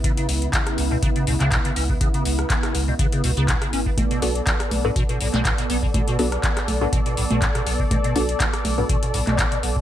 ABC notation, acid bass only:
X:1
M:4/4
L:1/16
Q:"Swing 16ths" 1/4=122
K:Bdor
V:1 name="Acid bass" clef=bass
C, C, z4 z B,, C, C, B,, C, B,, C, C C, | C, C, z4 z B,, C, C, B,, C, B,, C, C C, | B,, B,, z4 z A,, B,, B,, A,, B,, z B,, B, B,, | B,, B,, z4 z A,, B,, B,, A,, B,, A,, B,, B, B,, |
B,, B,, z4 z A,, B,, B,, A,, B,, z B,, B, B,, |]